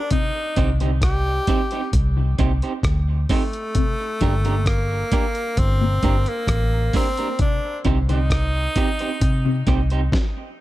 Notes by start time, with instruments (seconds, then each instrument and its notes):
0.11 clean electric guitar C3, tenor saxophone D#4, kick, closed hi-hat
0.56 fingered electric bass C2, clean electric guitar D3 C4 D#4 G4 C5, kick, closed hi-hat
0.80 clean electric guitar D3 C4 D#4 G4 C5, closed hi-hat
1.02 tenor saxophone G4, kick, cross-stick, closed hi-hat
1.47 clean electric guitar C4 D#4 G4 C5, kick, closed hi-hat
1.71 clean electric guitar C4 D#4 G4 C5, closed hi-hat
1.93 fingered electric bass C2, kick, closed hi-hat
2.17 clean electric guitar C3
2.39 fingered electric bass C2, clean electric guitar A#2 C4 D#4 G4 C5, kick, closed hi-hat
2.62 clean electric guitar C4 D#4 G4 C5, closed hi-hat
2.83 fingered electric bass D2, kick, cross-stick, closed hi-hat
3.29 tenor saxophone A3, clean electric guitar C4 D#4 G4 C5, kick, open hi-hat
3.53 closed hi-hat
3.75 clean electric guitar C3, kick, closed hi-hat
4.21 fingered electric bass G1, clean electric guitar D3 A#3 D4 G4 A#4, kick, closed hi-hat
4.45 clean electric guitar D3 A#3 D4 G4 A#4, closed hi-hat
4.66 tenor saxophone A#3, kick, cross-stick, closed hi-hat
5.12 clean electric guitar A#3 D4 G4 A#4, kick, closed hi-hat
5.35 closed hi-hat
5.57 fingered electric bass G1, tenor saxophone C4, kick, closed hi-hat
5.81 clean electric guitar A#2
6.03 fingered electric bass G1, clean electric guitar G2 A#3 D4 G4 A#4, kick, closed hi-hat
6.26 tenor saxophone A#3, closed hi-hat
6.47 fingered electric bass A1, kick, cross-stick, closed hi-hat
6.93 clean electric guitar A#3 D4 G4 A#4, tenor saxophone C4, kick, open hi-hat
7.17 clean electric guitar A#3 D4 G4 A#4, closed hi-hat
7.39 clean electric guitar C3, tenor saxophone D4, kick, closed hi-hat
7.85 fingered electric bass C2, clean electric guitar D3 C4 D#4 G4 C5, kick, closed hi-hat
8.09 clean electric guitar D3 C4 D#4 G4 C5, tenor saxophone D#4, closed hi-hat
8.30 kick, cross-stick, closed hi-hat
8.76 clean electric guitar C4 D#4 G4 C5, kick, closed hi-hat
8.99 clean electric guitar C4 D#4 G4 C5, closed hi-hat
9.21 fingered electric bass C3, kick, closed hi-hat
9.45 clean electric guitar C3
9.67 fingered electric bass C2, clean electric guitar A#2 C4 D#4 G4 C5, kick, cross-stick, closed hi-hat
9.90 clean electric guitar C4 D#4 G4 C5, closed hi-hat
10.12 kick, snare